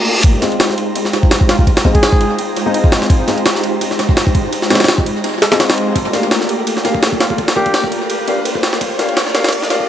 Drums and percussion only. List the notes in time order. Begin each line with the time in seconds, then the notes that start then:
0.24 kick, ride
0.42 snare, ride
0.52 ride
0.60 snare, ride
0.70 snare
0.78 ride
0.95 ride
1.05 snare
1.13 snare, ride
1.23 kick
1.31 snare, ride
1.41 kick
1.49 snare, ride
1.59 kick
1.67 kick, ride
1.77 snare, ride
1.85 kick
1.95 kick, ride
2.03 snare, open hi-hat
2.13 kick
2.21 ride
2.38 ride
2.56 ride
2.74 ride
2.84 kick
2.92 snare, ride
3.02 snare
3.10 kick, ride
3.28 snare, ride
3.38 ride
3.46 snare, ride
3.55 snare
3.63 ride
3.81 ride
3.91 snare
3.99 snare, ride
4.09 kick
4.17 snare, ride
4.27 kick
4.35 kick, ride
4.53 ride
4.62 snare
4.70 snare, ride
4.75 snare, ride
4.80 snare, ride
4.84 snare, ride
4.88 snare, open hi-hat
4.98 kick
5.06 ride
5.24 ride
5.42 snare, ride
5.52 snare, ride
5.60 snare, ride
5.70 snare, ride
5.78 ride
5.96 kick, ride
6.13 snare, ride
6.23 ride
6.31 snare, ride
6.41 snare
6.49 ride
6.67 ride
6.77 snare
6.85 snare, ride
6.95 kick
7.03 snare, ride
7.12 kick
7.20 snare, ride
7.30 kick
7.38 kick, ride
7.48 snare, ride
7.56 kick
7.66 kick, ride
7.74 snare, open hi-hat
7.84 kick
7.92 ride
8.10 ride
8.28 ride
8.45 ride
8.55 kick
8.63 snare, ride
8.73 snare
8.81 kick, ride
8.99 snare, ride
9.09 ride
9.17 snare, ride
9.27 snare
9.35 snare, ride
9.44 snare, ride
9.48 snare, ride
9.53 ride
9.62 snare
9.70 snare, ride
9.80 kick